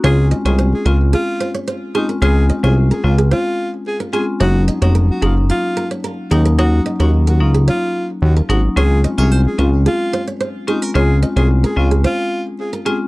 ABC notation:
X:1
M:4/4
L:1/16
Q:1/4=110
K:Db
V:1 name="Nylon-string guitar"
d z e d c z B z A z c d c z A B | d z e d z B z A c2 z3 B A z | d z e d B z A z G z B d B z A B | d z e d z B z A d2 z3 B A z |
d z e d c z B z A z c d c z A B | d z e d z B z A c2 z3 B A z |]
V:2 name="Alto saxophone"
A2 z A z A F z F3 z3 E z | A2 z A z A F z F3 z A z A z | G2 z G z G F z F3 z3 E z | G2 z G z G F z F3 z G z G z |
A2 z A z A F z F3 z3 E z | A2 z A z A F z F3 z A z A z |]
V:3 name="Marimba"
[A,CDF]2 z [A,CDF] z2 [A,CDF]2 z6 [A,CDF]2 | [A,CDF]2 z [A,CDF] z2 [A,CDF]2 z6 [A,CDF]2 | [G,B,DE]2 z [G,B,DE] z2 [G,B,DE]2 z6 [G,B,DE]2 | [G,B,DE]2 z [G,B,DE] z2 [G,B,DE]2 z6 [G,B,DE]2 |
[A,CDF]2 z [A,CDF] z2 [A,CDF]2 z6 [A,CDF]2 | [A,CDF]2 z [A,CDF] z2 [A,CDF]2 z6 [A,CDF]2 |]
V:4 name="Analog synth bass" clef=bass
D,,3 C,,3 D,,3 z6 z | D,,3 C,,3 D,,3 z6 z | G,,,3 F,,,3 G,,,3 z4 z E,,2- | E,,3 E,,3 D,,3 z3 E,,2 A,,,2 |
D,,3 C,,3 D,,3 z6 z | D,,3 C,,3 D,,3 z6 z |]